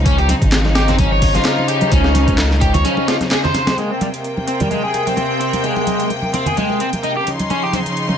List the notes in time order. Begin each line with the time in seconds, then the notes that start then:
Already playing: C#2 C#3 F3 D#4
0.06 C#4, kick, closed hi-hat, muted conga
0.18 G4, closed hi-hat
0.29 C4, closed hi-hat, high conga
0.42 G#1, kick, closed hi-hat, muted conga
0.52 snare, clap, closed hi-hat
0.65 snare, muted conga, high conga
0.75 G4, snare, closed hi-hat
0.88 C4, snare, closed hi-hat, low conga
0.99 C#4, kick, closed hi-hat, muted conga, high conga
1.12 C#5
1.22 kick, closed hi-hat, open hi-hat, muted conga
1.35 F4, snare, closed hi-hat, high conga
1.45 F4, snare, clap, closed hi-hat
1.59 muted conga
1.68 G4, closed hi-hat
1.81 closed hi-hat, muted conga, high conga
1.92 C#2 C#4, kick, closed hi-hat
2.04 snare
2.15 closed hi-hat, muted conga, high conga
2.28 kick, closed hi-hat
2.38 snare, clap, closed hi-hat, muted conga
2.51 snare, high conga
2.61 G4, kick, closed hi-hat
2.74 C#5, closed hi-hat, muted conga, low conga
2.85 C#4, closed hi-hat, high conga
2.97 muted conga
3.08 F4, snare, closed hi-hat
3.21 snare, closed hi-hat, high conga
3.31 G#4, snare, clap, closed hi-hat, muted conga
3.44 C5, snare, low conga
3.54 snare, closed hi-hat, muted conga
3.67 snare, closed hi-hat, high conga
3.77 C3 G#3 A#3 G5, closed hi-hat, muted conga
3.91 C4
4.01 G3, closed hi-hat, muted conga, high conga
4.14 closed hi-hat
4.24 closed hi-hat
4.37 muted conga, high conga
4.48 C4, closed hi-hat
4.60 G3, closed hi-hat, muted conga, low conga
4.71 G#3, closed hi-hat, high conga
4.84 G#4
4.94 closed hi-hat, muted conga
5.07 C4, closed hi-hat, high conga
5.17 C4, closed hi-hat, muted conga
5.41 C4, closed hi-hat
5.53 closed hi-hat, muted conga, high conga
5.64 G#3, closed hi-hat
5.76 muted conga
5.87 closed hi-hat, high conga
6.00 closed hi-hat
6.10 closed hi-hat, muted conga
6.22 high conga
6.34 C4, closed hi-hat, muted conga
6.46 G#4, closed hi-hat, low conga
6.57 G#3, closed hi-hat, high conga
6.69 muted conga
6.80 C4, closed hi-hat
6.93 closed hi-hat, muted conga, high conga
7.03 D#4, closed hi-hat
7.17 G4
7.27 C#3 F3 D#4 C6, closed hi-hat, muted conga
7.39 closed hi-hat, high conga
7.50 C#4, closed hi-hat, muted conga
7.63 G4
7.73 C4, closed hi-hat, high conga
7.86 closed hi-hat, muted conga
7.97 closed hi-hat
8.09 muted conga, high conga